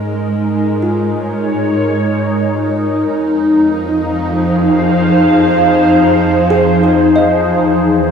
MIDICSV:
0, 0, Header, 1, 4, 480
1, 0, Start_track
1, 0, Tempo, 1138520
1, 1309, Time_signature, 4, 2, 24, 8
1, 3420, End_track
2, 0, Start_track
2, 0, Title_t, "Kalimba"
2, 0, Program_c, 0, 108
2, 348, Note_on_c, 0, 65, 45
2, 1534, Note_off_c, 0, 65, 0
2, 2742, Note_on_c, 0, 68, 63
2, 2881, Note_on_c, 0, 72, 48
2, 3017, Note_on_c, 0, 75, 51
2, 3420, Note_off_c, 0, 68, 0
2, 3420, Note_off_c, 0, 72, 0
2, 3420, Note_off_c, 0, 75, 0
2, 3420, End_track
3, 0, Start_track
3, 0, Title_t, "Ambient pad"
3, 0, Program_c, 1, 92
3, 0, Note_on_c, 1, 56, 67
3, 0, Note_on_c, 1, 61, 63
3, 0, Note_on_c, 1, 63, 72
3, 0, Note_on_c, 1, 68, 73
3, 0, Note_on_c, 1, 70, 68
3, 59, Note_off_c, 1, 68, 0
3, 147, Note_off_c, 1, 61, 0
3, 250, Note_on_c, 1, 73, 73
3, 1305, Note_off_c, 1, 56, 0
3, 1311, Note_off_c, 1, 73, 0
3, 1321, Note_on_c, 1, 53, 76
3, 1623, Note_on_c, 1, 72, 80
3, 1656, Note_on_c, 1, 68, 78
3, 1685, Note_on_c, 1, 77, 79
3, 1991, Note_off_c, 1, 70, 0
3, 3218, Note_off_c, 1, 63, 0
3, 3224, Note_off_c, 1, 72, 0
3, 3225, Note_off_c, 1, 77, 0
3, 3228, Note_off_c, 1, 53, 0
3, 3230, Note_on_c, 1, 52, 75
3, 3267, Note_on_c, 1, 64, 66
3, 3420, Note_off_c, 1, 52, 0
3, 3420, Note_off_c, 1, 64, 0
3, 3420, Note_off_c, 1, 68, 0
3, 3420, End_track
4, 0, Start_track
4, 0, Title_t, "Cello section"
4, 0, Program_c, 2, 48
4, 0, Note_on_c, 2, 44, 71
4, 1285, Note_off_c, 2, 44, 0
4, 1310, Note_on_c, 2, 41, 72
4, 3198, Note_off_c, 2, 41, 0
4, 3217, Note_on_c, 2, 40, 79
4, 3420, Note_off_c, 2, 40, 0
4, 3420, End_track
0, 0, End_of_file